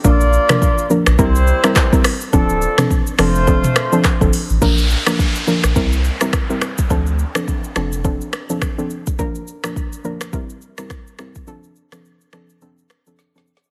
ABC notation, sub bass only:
X:1
M:4/4
L:1/16
Q:"Swing 16ths" 1/4=105
K:F
V:1 name="Sub bass" clef=bass
B,,,3 z4 B,,, C,,3 z4 z | D,,,3 z3 F,,,4 z3 G,,, z A,,, | B,,,3 z4 B,,, C,,3 z4 z | D,,3 z3 F,,,4 z6 |
z16 | z16 |]